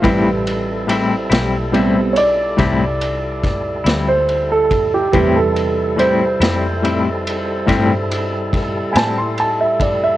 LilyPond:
<<
  \new Staff \with { instrumentName = "Grand piano" } { \time 12/8 \key a \minor \tempo 4. = 47 c'4. r4 <cis'' d''>2~ <cis'' d''>16 c''8 a'8 g'16~ | g'16 a'8. c''2. r8 <gis'' a''>16 c'''16 a''16 e''16 d''16 e''16 | }
  \new Staff \with { instrumentName = "Grand piano" } { \time 12/8 \key a \minor <g b'>2 <g b c'>8 r2. r8 | <c g b'>1. | }
  \new Staff \with { instrumentName = "Tonewheel organ" } { \time 12/8 \key a \minor <g e' a'>1. | <g e' a'>1. | }
  \new Staff \with { instrumentName = "Clean electric guitar" } { \time 12/8 \key a \minor <a, g c' e'>8 r8 <a, g c' e'>8 <g c' e'>8 <a, g c' e'>8 r8 <a, g c' e'>8 r4 <g c' e'>8 r4 | <a, g c' e'>8 r8 <a, g c' e'>8 <g c' e'>8 <a, g c' e'>8 r8 <a, g c' e'>8 r4 <g c' e'>8 r4 | }
  \new Staff \with { instrumentName = "Fingered electric bass" } { \clef bass \time 12/8 \key a \minor a,,4. b,,4. c,4. d,4. | e,4. f,4. g,4. a,4. | }
  \new DrumStaff \with { instrumentName = "Drums" } \drummode { \time 12/8 <bd cymr>8 cymr8 cymr8 <cymr sn>8 cymr8 cymr8 <bd cymr sn>8 cymr8 <bd cymr sn>8 <cymr sn>8 cymr8 <bd cymr>8 | <bd cymr>8 cymr8 cymr8 <cymr sn>8 cymr8 cymr8 <bd cymr sn>8 cymr8 <bd cymr sn>8 <cymr sn>8 cymr8 <bd cymr>8 | }
>>